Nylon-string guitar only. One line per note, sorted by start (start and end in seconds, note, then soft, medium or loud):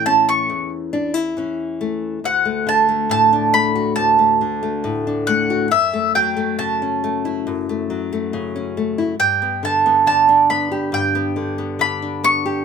0.00 0.50 A2 medium
0.00 1.36 E3 medium
0.00 1.80 A3 medium
0.00 0.93 E4 medium
0.06 1.37 C#4 medium
0.50 2.18 E2 medium
0.93 1.14 D4 medium
1.14 2.23 E4 medium
1.37 2.18 E3 medium
1.37 2.19 C#4 medium
1.81 2.19 A3 medium
2.24 3.96 D2 medium
2.45 2.88 A3 soft
2.67 4.40 D3 medium
2.89 3.54 A3 medium
3.10 4.40 A2 medium
3.33 5.06 D4 medium
3.54 4.17 A3 medium
3.75 5.49 F#4 medium
3.97 5.71 D2 medium
4.19 4.61 A3 medium
4.41 5.71 D3 medium
4.63 5.28 A3 medium
4.84 5.71 A2 medium
5.07 5.66 D4 medium
5.29 5.66 A3 medium
5.50 5.66 F#4 medium
5.71 7.45 F#2 medium
5.93 6.35 A3 medium
6.15 7.89 F#3 medium
6.37 7.01 A3 medium
6.59 7.89 C#3 medium
6.82 8.54 C#4 medium
7.04 7.68 A3 medium
7.25 8.97 E4 medium
7.47 9.15 F#2 medium
7.69 8.11 A3 medium
7.90 9.14 F#3 medium
8.13 8.76 A3 medium
8.33 9.14 C#3 medium
8.56 9.15 C#4 medium
8.77 9.15 A3 medium
8.98 9.14 E4 medium
9.19 10.91 G2 medium
9.42 9.85 B3 medium
9.63 10.05 D3 medium
9.86 10.49 B3 medium
10.06 11.35 D3 medium
10.29 12.01 D4 medium
10.50 11.14 B3 medium
10.72 12.44 G4 medium
10.92 12.62 G2 medium
11.15 11.57 B3 medium
11.36 11.78 D3 medium
11.58 12.22 B3 medium
11.79 12.62 D3 medium
12.02 12.62 D4 medium
12.24 12.62 B3 medium
12.46 12.62 G4 medium